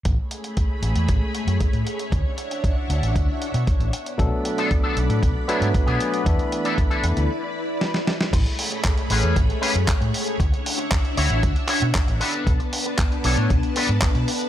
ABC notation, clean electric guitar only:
X:1
M:4/4
L:1/16
Q:1/4=116
K:A
V:1 name="Clean electric guitar"
z16 | z16 | z3 [B,DA] z [B,DA] z4 [B,DE]2 z [B,DG]3 | z3 [DEA] z [DEA] z8 z2 |
z6 [CGB]2 z2 [CGB] z4 z | z6 [EFc]2 z2 [EFc] z3 [DAB]2 | z6 [DAc]2 z2 [DAB] z4 z |]